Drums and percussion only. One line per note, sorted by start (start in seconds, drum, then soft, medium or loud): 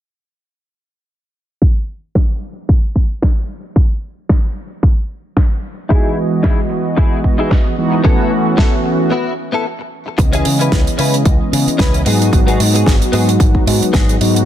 1.62 kick loud
2.15 kick loud
2.15 snare loud
2.69 kick loud
2.96 kick medium
3.22 kick loud
3.22 snare loud
3.76 kick loud
4.29 kick loud
4.29 snare loud
4.83 kick loud
5.37 kick loud
5.37 snare loud
5.90 kick loud
6.44 kick loud
6.44 snare loud
6.97 kick loud
7.24 kick medium
7.51 kick loud
7.51 snare loud
8.05 kick loud
8.58 kick loud
8.58 snare loud
10.18 kick loud
10.18 closed hi-hat medium
10.33 closed hi-hat medium
10.45 open hi-hat loud
10.61 closed hi-hat medium
10.72 kick loud
10.72 snare loud
10.72 closed hi-hat medium
10.87 closed hi-hat medium
10.99 open hi-hat medium
11.14 closed hi-hat medium
11.25 kick loud
11.25 closed hi-hat medium
11.53 open hi-hat loud
11.68 closed hi-hat medium
11.79 kick loud
11.79 snare loud
11.79 closed hi-hat medium
11.94 closed hi-hat medium
12.06 open hi-hat loud
12.22 closed hi-hat medium
12.33 kick loud
12.33 closed hi-hat medium
12.48 closed hi-hat soft
12.60 open hi-hat loud
12.75 closed hi-hat medium
12.86 kick loud
12.86 snare loud
12.86 closed hi-hat medium
13.02 closed hi-hat medium
13.13 open hi-hat medium
13.29 closed hi-hat medium
13.40 kick loud
13.40 closed hi-hat medium
13.55 kick medium
13.67 open hi-hat loud
13.83 closed hi-hat medium
13.94 kick loud
13.94 snare loud
13.94 closed hi-hat medium
14.09 closed hi-hat medium
14.21 open hi-hat medium
14.36 closed hi-hat medium